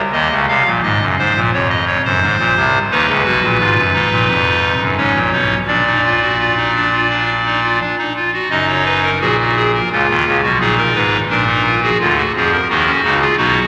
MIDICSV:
0, 0, Header, 1, 2, 480
1, 0, Start_track
1, 0, Key_signature, -6, "minor"
1, 0, Tempo, 692841
1, 92, Time_signature, 4, 2, 24, 8
1, 3452, Tempo, 704225
1, 6332, Tempo, 694444
1, 9418, End_track
2, 0, Start_track
2, 0, Title_t, "Pipe organ"
2, 0, Program_c, 0, 19
2, 88, Note_on_c, 0, 39, 77
2, 88, Note_on_c, 0, 51, 82
2, 88, Note_on_c, 0, 75, 68
2, 192, Note_off_c, 0, 39, 0
2, 193, Note_off_c, 0, 51, 0
2, 217, Note_on_c, 0, 37, 66
2, 218, Note_on_c, 0, 49, 68
2, 237, Note_off_c, 0, 75, 0
2, 318, Note_off_c, 0, 37, 0
2, 318, Note_off_c, 0, 49, 0
2, 333, Note_on_c, 0, 48, 67
2, 333, Note_on_c, 0, 77, 61
2, 334, Note_on_c, 0, 36, 65
2, 435, Note_off_c, 0, 48, 0
2, 436, Note_off_c, 0, 36, 0
2, 453, Note_on_c, 0, 46, 68
2, 455, Note_on_c, 0, 34, 66
2, 482, Note_off_c, 0, 77, 0
2, 555, Note_off_c, 0, 46, 0
2, 557, Note_off_c, 0, 34, 0
2, 576, Note_on_c, 0, 75, 64
2, 577, Note_on_c, 0, 32, 68
2, 579, Note_on_c, 0, 44, 70
2, 679, Note_off_c, 0, 32, 0
2, 679, Note_off_c, 0, 44, 0
2, 699, Note_on_c, 0, 42, 61
2, 702, Note_on_c, 0, 30, 65
2, 725, Note_off_c, 0, 75, 0
2, 800, Note_off_c, 0, 42, 0
2, 802, Note_off_c, 0, 30, 0
2, 818, Note_on_c, 0, 32, 63
2, 820, Note_on_c, 0, 72, 60
2, 821, Note_on_c, 0, 44, 66
2, 920, Note_off_c, 0, 32, 0
2, 921, Note_off_c, 0, 44, 0
2, 941, Note_on_c, 0, 46, 70
2, 944, Note_on_c, 0, 34, 71
2, 967, Note_off_c, 0, 72, 0
2, 1042, Note_off_c, 0, 46, 0
2, 1043, Note_off_c, 0, 34, 0
2, 1059, Note_on_c, 0, 73, 64
2, 1062, Note_on_c, 0, 29, 73
2, 1062, Note_on_c, 0, 41, 75
2, 1161, Note_off_c, 0, 73, 0
2, 1175, Note_on_c, 0, 75, 63
2, 1279, Note_off_c, 0, 75, 0
2, 1294, Note_on_c, 0, 73, 66
2, 1369, Note_off_c, 0, 29, 0
2, 1369, Note_off_c, 0, 41, 0
2, 1398, Note_off_c, 0, 73, 0
2, 1419, Note_on_c, 0, 72, 61
2, 1420, Note_on_c, 0, 30, 77
2, 1420, Note_on_c, 0, 42, 67
2, 1521, Note_off_c, 0, 30, 0
2, 1521, Note_off_c, 0, 42, 0
2, 1533, Note_on_c, 0, 32, 71
2, 1533, Note_on_c, 0, 44, 71
2, 1637, Note_off_c, 0, 32, 0
2, 1637, Note_off_c, 0, 44, 0
2, 1656, Note_on_c, 0, 34, 75
2, 1656, Note_on_c, 0, 46, 76
2, 1758, Note_off_c, 0, 34, 0
2, 1758, Note_off_c, 0, 46, 0
2, 1778, Note_on_c, 0, 48, 67
2, 1780, Note_on_c, 0, 36, 66
2, 1925, Note_off_c, 0, 48, 0
2, 1926, Note_off_c, 0, 36, 0
2, 1931, Note_off_c, 0, 72, 0
2, 2016, Note_on_c, 0, 63, 77
2, 2018, Note_on_c, 0, 51, 87
2, 2019, Note_on_c, 0, 39, 80
2, 2019, Note_on_c, 0, 71, 75
2, 2118, Note_off_c, 0, 39, 0
2, 2118, Note_off_c, 0, 51, 0
2, 2136, Note_on_c, 0, 37, 67
2, 2137, Note_on_c, 0, 49, 73
2, 2162, Note_off_c, 0, 63, 0
2, 2237, Note_off_c, 0, 37, 0
2, 2237, Note_off_c, 0, 49, 0
2, 2249, Note_on_c, 0, 66, 61
2, 2251, Note_on_c, 0, 47, 68
2, 2252, Note_on_c, 0, 35, 69
2, 2354, Note_off_c, 0, 35, 0
2, 2354, Note_off_c, 0, 47, 0
2, 2375, Note_on_c, 0, 34, 71
2, 2376, Note_on_c, 0, 46, 61
2, 2398, Note_off_c, 0, 66, 0
2, 2476, Note_off_c, 0, 34, 0
2, 2476, Note_off_c, 0, 46, 0
2, 2488, Note_on_c, 0, 32, 69
2, 2489, Note_on_c, 0, 44, 68
2, 2489, Note_on_c, 0, 65, 62
2, 2592, Note_off_c, 0, 32, 0
2, 2593, Note_off_c, 0, 44, 0
2, 2607, Note_on_c, 0, 42, 58
2, 2610, Note_on_c, 0, 30, 63
2, 2638, Note_off_c, 0, 65, 0
2, 2711, Note_off_c, 0, 42, 0
2, 2713, Note_off_c, 0, 30, 0
2, 2724, Note_on_c, 0, 44, 62
2, 2724, Note_on_c, 0, 63, 59
2, 2726, Note_on_c, 0, 32, 61
2, 2830, Note_off_c, 0, 44, 0
2, 2831, Note_off_c, 0, 32, 0
2, 2850, Note_on_c, 0, 34, 66
2, 2851, Note_on_c, 0, 46, 65
2, 2953, Note_off_c, 0, 34, 0
2, 2954, Note_off_c, 0, 46, 0
2, 2963, Note_on_c, 0, 29, 67
2, 2965, Note_on_c, 0, 41, 62
2, 3254, Note_off_c, 0, 71, 0
2, 3276, Note_off_c, 0, 29, 0
2, 3277, Note_off_c, 0, 41, 0
2, 3327, Note_on_c, 0, 30, 61
2, 3327, Note_on_c, 0, 42, 58
2, 3347, Note_off_c, 0, 63, 0
2, 3432, Note_off_c, 0, 30, 0
2, 3432, Note_off_c, 0, 42, 0
2, 3443, Note_on_c, 0, 44, 60
2, 3443, Note_on_c, 0, 61, 50
2, 3445, Note_on_c, 0, 73, 56
2, 3446, Note_on_c, 0, 32, 57
2, 3549, Note_off_c, 0, 44, 0
2, 3551, Note_off_c, 0, 32, 0
2, 3558, Note_on_c, 0, 34, 56
2, 3561, Note_on_c, 0, 46, 58
2, 3593, Note_off_c, 0, 61, 0
2, 3666, Note_off_c, 0, 34, 0
2, 3668, Note_off_c, 0, 46, 0
2, 3687, Note_on_c, 0, 35, 51
2, 3687, Note_on_c, 0, 47, 53
2, 3689, Note_on_c, 0, 63, 45
2, 3836, Note_off_c, 0, 35, 0
2, 3836, Note_off_c, 0, 47, 0
2, 3837, Note_off_c, 0, 63, 0
2, 3858, Note_off_c, 0, 73, 0
2, 3921, Note_on_c, 0, 46, 51
2, 3922, Note_on_c, 0, 34, 55
2, 3922, Note_on_c, 0, 74, 54
2, 3926, Note_on_c, 0, 62, 52
2, 4030, Note_off_c, 0, 62, 0
2, 4053, Note_on_c, 0, 63, 48
2, 4154, Note_off_c, 0, 63, 0
2, 4170, Note_on_c, 0, 65, 44
2, 4272, Note_off_c, 0, 65, 0
2, 4295, Note_on_c, 0, 66, 44
2, 4395, Note_off_c, 0, 66, 0
2, 4412, Note_on_c, 0, 65, 48
2, 4513, Note_off_c, 0, 65, 0
2, 4532, Note_on_c, 0, 63, 45
2, 4633, Note_off_c, 0, 63, 0
2, 4657, Note_on_c, 0, 62, 41
2, 4756, Note_off_c, 0, 62, 0
2, 4774, Note_on_c, 0, 65, 47
2, 4875, Note_off_c, 0, 65, 0
2, 4895, Note_on_c, 0, 62, 47
2, 5042, Note_off_c, 0, 62, 0
2, 5137, Note_on_c, 0, 63, 46
2, 5237, Note_off_c, 0, 63, 0
2, 5256, Note_on_c, 0, 65, 47
2, 5356, Note_off_c, 0, 65, 0
2, 5371, Note_off_c, 0, 46, 0
2, 5372, Note_off_c, 0, 34, 0
2, 5372, Note_off_c, 0, 74, 0
2, 5379, Note_on_c, 0, 62, 48
2, 5479, Note_off_c, 0, 62, 0
2, 5498, Note_on_c, 0, 63, 47
2, 5599, Note_off_c, 0, 63, 0
2, 5617, Note_on_c, 0, 65, 45
2, 5718, Note_off_c, 0, 65, 0
2, 5738, Note_on_c, 0, 66, 42
2, 5839, Note_off_c, 0, 66, 0
2, 5849, Note_on_c, 0, 30, 65
2, 5850, Note_on_c, 0, 42, 64
2, 5852, Note_on_c, 0, 63, 59
2, 5852, Note_on_c, 0, 75, 76
2, 5955, Note_off_c, 0, 75, 0
2, 5973, Note_on_c, 0, 73, 60
2, 6076, Note_off_c, 0, 73, 0
2, 6093, Note_on_c, 0, 71, 64
2, 6196, Note_off_c, 0, 71, 0
2, 6210, Note_on_c, 0, 70, 64
2, 6263, Note_off_c, 0, 30, 0
2, 6264, Note_off_c, 0, 42, 0
2, 6265, Note_off_c, 0, 63, 0
2, 6314, Note_off_c, 0, 70, 0
2, 6331, Note_on_c, 0, 46, 58
2, 6331, Note_on_c, 0, 68, 66
2, 6332, Note_on_c, 0, 66, 55
2, 6333, Note_on_c, 0, 34, 58
2, 6436, Note_off_c, 0, 68, 0
2, 6443, Note_off_c, 0, 66, 0
2, 6457, Note_on_c, 0, 66, 63
2, 6559, Note_off_c, 0, 66, 0
2, 6573, Note_on_c, 0, 68, 59
2, 6678, Note_off_c, 0, 68, 0
2, 6698, Note_on_c, 0, 70, 67
2, 6747, Note_off_c, 0, 46, 0
2, 6748, Note_off_c, 0, 34, 0
2, 6800, Note_off_c, 0, 70, 0
2, 6824, Note_on_c, 0, 37, 58
2, 6824, Note_on_c, 0, 65, 70
2, 6825, Note_on_c, 0, 49, 57
2, 6924, Note_off_c, 0, 37, 0
2, 6924, Note_off_c, 0, 49, 0
2, 6944, Note_on_c, 0, 39, 62
2, 6946, Note_on_c, 0, 51, 58
2, 7044, Note_off_c, 0, 39, 0
2, 7045, Note_off_c, 0, 51, 0
2, 7061, Note_on_c, 0, 37, 60
2, 7061, Note_on_c, 0, 49, 61
2, 7130, Note_off_c, 0, 65, 0
2, 7161, Note_off_c, 0, 37, 0
2, 7162, Note_off_c, 0, 49, 0
2, 7177, Note_on_c, 0, 47, 59
2, 7178, Note_on_c, 0, 35, 59
2, 7179, Note_on_c, 0, 66, 64
2, 7279, Note_off_c, 0, 47, 0
2, 7280, Note_off_c, 0, 35, 0
2, 7281, Note_off_c, 0, 66, 0
2, 7293, Note_on_c, 0, 46, 56
2, 7294, Note_on_c, 0, 34, 55
2, 7295, Note_on_c, 0, 68, 68
2, 7296, Note_on_c, 0, 63, 56
2, 7398, Note_off_c, 0, 68, 0
2, 7417, Note_on_c, 0, 70, 65
2, 7443, Note_off_c, 0, 46, 0
2, 7444, Note_off_c, 0, 34, 0
2, 7520, Note_off_c, 0, 70, 0
2, 7538, Note_on_c, 0, 32, 54
2, 7538, Note_on_c, 0, 44, 54
2, 7538, Note_on_c, 0, 71, 65
2, 7686, Note_off_c, 0, 71, 0
2, 7687, Note_off_c, 0, 32, 0
2, 7687, Note_off_c, 0, 44, 0
2, 7709, Note_off_c, 0, 63, 0
2, 7774, Note_on_c, 0, 62, 67
2, 7775, Note_on_c, 0, 70, 81
2, 7776, Note_on_c, 0, 34, 66
2, 7776, Note_on_c, 0, 46, 69
2, 7879, Note_off_c, 0, 62, 0
2, 7897, Note_on_c, 0, 63, 56
2, 8001, Note_off_c, 0, 63, 0
2, 8020, Note_on_c, 0, 65, 57
2, 8087, Note_off_c, 0, 70, 0
2, 8123, Note_off_c, 0, 65, 0
2, 8140, Note_on_c, 0, 66, 58
2, 8141, Note_on_c, 0, 68, 63
2, 8192, Note_off_c, 0, 34, 0
2, 8192, Note_off_c, 0, 46, 0
2, 8243, Note_off_c, 0, 66, 0
2, 8244, Note_off_c, 0, 68, 0
2, 8260, Note_on_c, 0, 65, 73
2, 8264, Note_on_c, 0, 38, 66
2, 8264, Note_on_c, 0, 50, 63
2, 8366, Note_off_c, 0, 65, 0
2, 8384, Note_on_c, 0, 66, 60
2, 8412, Note_off_c, 0, 38, 0
2, 8412, Note_off_c, 0, 50, 0
2, 8485, Note_off_c, 0, 66, 0
2, 8509, Note_on_c, 0, 41, 55
2, 8510, Note_on_c, 0, 68, 63
2, 8511, Note_on_c, 0, 53, 59
2, 8609, Note_off_c, 0, 68, 0
2, 8626, Note_on_c, 0, 70, 73
2, 8654, Note_off_c, 0, 41, 0
2, 8656, Note_off_c, 0, 53, 0
2, 8726, Note_off_c, 0, 70, 0
2, 8743, Note_on_c, 0, 66, 72
2, 8744, Note_on_c, 0, 39, 64
2, 8745, Note_on_c, 0, 51, 62
2, 8745, Note_on_c, 0, 63, 60
2, 8844, Note_off_c, 0, 63, 0
2, 8857, Note_on_c, 0, 61, 60
2, 8890, Note_off_c, 0, 39, 0
2, 8890, Note_off_c, 0, 51, 0
2, 8959, Note_off_c, 0, 61, 0
2, 8979, Note_on_c, 0, 37, 67
2, 8981, Note_on_c, 0, 49, 65
2, 8982, Note_on_c, 0, 63, 64
2, 9048, Note_off_c, 0, 66, 0
2, 9082, Note_off_c, 0, 63, 0
2, 9097, Note_on_c, 0, 68, 73
2, 9100, Note_on_c, 0, 65, 68
2, 9126, Note_off_c, 0, 37, 0
2, 9126, Note_off_c, 0, 49, 0
2, 9198, Note_off_c, 0, 68, 0
2, 9200, Note_off_c, 0, 65, 0
2, 9214, Note_on_c, 0, 35, 61
2, 9214, Note_on_c, 0, 63, 63
2, 9214, Note_on_c, 0, 66, 76
2, 9215, Note_on_c, 0, 47, 65
2, 9361, Note_off_c, 0, 63, 0
2, 9362, Note_off_c, 0, 35, 0
2, 9362, Note_off_c, 0, 47, 0
2, 9418, Note_off_c, 0, 66, 0
2, 9418, End_track
0, 0, End_of_file